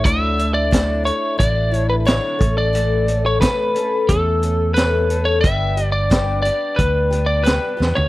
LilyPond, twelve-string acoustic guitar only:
\new Staff \with { instrumentName = "Twelve-string acoustic guitar" } { \time 4/4 \key d \major \tempo 4 = 89 <d fis a d' e'>8 <a d' e'>8 <d fis a d' e'>8 <a d' e'>8 <fis a d' e'>8 <a d' e'>8 <d fis a d' e'>8 <a cis' a'>8 | <a, e a a'>8 <a cis' a'>8 <a, e a cis' a'>8 <a cis' a'>8 <e a cis' a'>8 <a cis' a'>8 <a, e a cis' a'>8 <a cis' a'>8 | <g, d g b d' g'>8 <g b d' g'>8 <g, d g b d' g'>8 <g b d' g'>8 <g b d' g'>8 <g b d' g'>8 <g, d g b d' g'>8 <g b d' g'>8 | }